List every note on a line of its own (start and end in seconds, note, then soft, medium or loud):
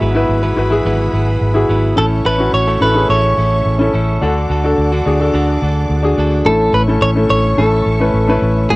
0.00 0.24 G#1 loud
0.00 0.53 G#2 medium
0.00 0.42 F#3 medium
0.00 0.42 B3 medium
0.00 0.15 E4 medium
0.00 0.42 E4 medium
0.00 0.16 F#4 medium
0.00 0.72 G#4 medium
0.00 1.95 G#4 medium
0.00 0.42 B4 medium
0.00 1.93 E5 medium
0.00 1.95 F#5 medium
0.00 1.95 B5 medium
0.15 0.49 E4 medium
0.15 0.49 F#4 medium
0.15 0.50 B4 loud
0.29 0.52 G#1 loud
0.43 0.84 G#2 medium
0.43 0.84 E3 medium
0.43 0.85 F#3 medium
0.43 0.85 B3 medium
0.43 0.85 E4 medium
0.43 0.85 B4 medium
0.56 0.80 G#1 loud
0.56 0.68 E4 medium
0.56 0.68 F#4 medium
0.56 0.69 B4 medium
0.70 1.39 E4 medium
0.70 1.39 F#4 medium
0.70 1.40 G#4 loud
0.85 1.08 G#1 loud
0.85 1.13 G#2 medium
0.85 1.13 E3 loud
0.85 1.12 F#3 loud
0.85 1.12 B3 medium
0.85 1.13 E4 loud
0.85 1.14 B4 loud
1.13 1.36 G#1 medium
1.13 1.68 F#3 medium
1.13 1.68 B3 medium
1.13 1.70 E4 medium
1.13 1.70 B4 medium
1.41 1.64 G#1 medium
1.54 1.89 E4 medium
1.54 1.89 F#4 medium
1.54 1.89 G#4 medium
1.69 1.92 G#1 medium
1.69 1.96 F#3 medium
1.69 1.97 B3 medium
1.69 1.97 E4 medium
1.69 1.98 B4 medium
1.96 2.20 A1 loud
1.96 2.77 A2 medium
1.96 6.42 A3 medium
1.96 2.24 A3 medium
1.96 2.31 C#4 medium
1.96 2.25 C#4 medium
1.96 2.31 E4 medium
1.96 2.25 E4 medium
1.96 2.05 A4 medium
1.96 2.32 A4 medium
1.96 2.26 A4 medium
1.96 4.19 C#5 medium
1.96 4.19 E5 medium
1.96 4.19 C#6 medium
2.25 2.48 A1 loud
2.25 2.67 A3 medium
2.25 2.67 C#4 medium
2.25 2.66 E4 medium
2.25 2.66 A4 medium
2.25 2.54 B4 medium
2.38 2.73 C#4 medium
2.38 2.73 E4 medium
2.38 2.74 F#4 medium
2.53 2.76 A1 loud
2.53 2.80 C#5 loud
2.67 3.08 A2 medium
2.67 3.08 A3 medium
2.67 3.08 C#4 medium
2.67 3.09 E4 medium
2.67 3.09 A4 medium
2.81 3.04 A1 loud
2.81 2.92 C#4 medium
2.81 2.93 E4 medium
2.81 2.93 A4 medium
2.81 3.08 B4 medium
2.95 3.63 C#4 medium
2.95 3.64 E4 medium
2.95 3.64 G#4 medium
3.09 3.32 A1 loud
3.09 3.37 A2 loud
3.09 3.36 A3 medium
3.09 3.37 C#4 loud
3.09 3.37 E4 medium
3.09 3.38 A4 loud
3.09 3.90 C#5 medium
3.37 3.61 A1 loud
3.37 3.93 A3 medium
3.37 3.93 C#4 medium
3.37 3.93 E4 medium
3.37 3.95 A4 medium
3.65 3.88 A1 loud
3.79 4.13 C#4 medium
3.79 4.14 E4 medium
3.79 4.14 A4 medium
3.93 4.17 A1 medium
3.93 4.21 A3 medium
3.93 4.22 C#4 medium
3.93 4.22 E4 medium
3.93 4.22 A4 medium
4.21 4.45 D2 loud
4.21 4.48 D3 medium
4.21 5.02 D3 medium
4.21 4.56 D4 medium
4.21 4.49 D4 medium
4.21 4.56 F#4 medium
4.21 4.49 F#4 medium
4.21 4.56 A4 loud
4.21 4.50 A4 medium
4.21 6.44 D5 medium
4.21 6.44 F#5 medium
4.21 6.44 D6 medium
4.49 4.73 D2 loud
4.49 4.92 D3 medium
4.49 4.92 D4 medium
4.49 4.91 F#4 medium
4.49 4.91 A4 medium
4.64 4.98 D4 medium
4.64 4.98 F#4 medium
4.64 4.99 A4 medium
4.78 5.01 D2 loud
4.92 5.33 D3 medium
4.92 5.33 D4 medium
4.92 5.33 F#4 medium
4.92 5.34 A4 medium
5.05 5.29 D2 medium
5.05 5.17 D4 medium
5.05 5.17 F#4 medium
5.05 5.18 G#4 medium
5.19 5.88 D4 medium
5.19 5.88 F#4 medium
5.19 5.89 A4 loud
5.34 5.57 D2 loud
5.34 5.60 D3 loud
5.34 5.61 D4 medium
5.34 5.62 F#4 medium
5.34 5.62 A4 loud
5.61 5.85 D2 medium
5.61 6.16 D3 medium
5.61 6.17 D4 medium
5.61 6.18 F#4 medium
5.61 6.19 A4 medium
5.90 6.13 D2 loud
6.03 6.37 D4 medium
6.03 6.38 F#4 medium
6.03 6.38 G#4 medium
6.18 6.41 D2 medium
6.18 6.46 D3 medium
6.18 6.46 D4 medium
6.18 6.47 F#4 medium
6.18 6.47 A4 medium
6.45 6.68 A1 medium
6.45 7.26 A2 medium
6.45 6.80 A3 medium
6.45 6.80 C#4 medium
6.45 6.80 E4 medium
6.45 6.72 A4 medium
6.45 6.80 A4 medium
6.45 8.68 A4 medium
6.45 8.68 C#5 medium
6.45 8.76 E5 medium
6.45 8.68 C#6 medium
6.73 6.97 A1 loud
6.73 6.82 B4 loud
6.87 7.10 A3 medium
6.87 7.11 C#4 medium
6.87 7.11 E4 medium
6.87 7.11 A4 medium
7.01 7.25 A1 loud
7.01 7.10 C#5 loud
7.15 7.50 A3 medium
7.15 7.50 C#4 medium
7.15 7.50 E4 medium
7.15 7.50 A4 medium
7.30 7.53 A1 loud
7.30 7.59 C#5 loud
7.57 7.81 A1 loud
7.57 7.92 A3 medium
7.57 7.92 C#4 medium
7.57 7.92 E4 medium
7.57 8.38 A4 medium
7.57 7.93 A4 medium
7.86 8.09 A1 loud
8.00 8.23 A3 medium
8.00 8.23 C#4 medium
8.00 8.23 E4 medium
8.00 8.23 B4 medium
8.14 8.37 A1 loud
8.28 8.62 A3 medium
8.28 8.62 C#4 medium
8.28 8.63 E4 medium
8.28 8.63 B4 loud
8.42 8.65 A1 loud
8.70 8.76 G#1 loud
8.70 8.76 G#2 medium
8.70 8.76 B3 medium
8.70 8.76 E4 medium
8.70 8.76 F#4 medium
8.70 8.76 G#4 medium
8.70 8.76 F#5 medium
8.70 8.76 B5 medium